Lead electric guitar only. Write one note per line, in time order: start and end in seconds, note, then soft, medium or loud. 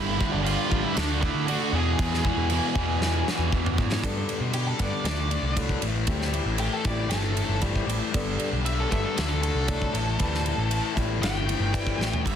0.00 0.29 E4 medium
0.00 0.32 E5 loud
0.33 0.38 D4 medium
0.33 0.38 D5 medium
0.44 0.82 F4 medium
0.44 0.84 F5 medium
0.84 0.96 E4 medium
0.84 0.98 E5 loud
0.97 1.21 D4 medium
0.97 1.23 D5 medium
1.21 1.46 E4 medium
1.21 1.47 E5 medium
1.47 1.71 F#4 medium
1.47 1.74 F#5 loud
1.75 3.49 G#4 medium
1.75 3.49 G#5 loud
4.54 4.67 G4 medium
4.68 4.80 A4 medium
4.80 5.04 D5 medium
5.06 5.56 D5 medium
6.60 6.73 G4 loud
6.73 6.86 A4 medium
6.86 7.11 D5 medium
7.09 7.60 A4 loud
8.65 8.78 E5 medium
8.80 8.92 A4 medium
8.91 9.04 E5 medium
9.04 9.17 A4 medium
9.17 9.30 E5 medium
9.29 9.41 A4 medium
9.42 10.93 A4 medium
11.23 12.22 G5 loud
12.26 12.36 E5 loud